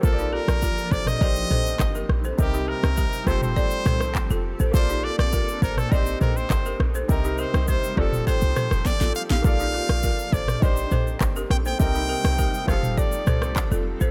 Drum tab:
SH |xx-xxxxxxxxxxx-x|xx-xxxxxxxxxxx-x|xx-xxxxxxxxxxx-x|xxxxxx-xxxxxxxxx|
CP |------------x---|------------x---|------------x---|----------------|
SD |---r---r----r-r-|---r--r---rr----|---r---r----r-r-|---r--r---rroo-o|
T2 |-------o--o-----|-------o--o-----|-------o--o-----|-------o--o-----|
BD |o---o-o-o---o---|o---o-o-o---o---|o---o-o-o---o---|o---o-o-o---o---|

SH |xx-xxxxxxxxxxx-x|xx-xxxxxxxxxxx-x|
CP |------------x---|------------x---|
SD |---r---r----r-r-|---r--r---rr----|
T2 |-------o--o-----|-------o--o-----|
BD |o---o-o-o---o---|o---o-o-o---o---|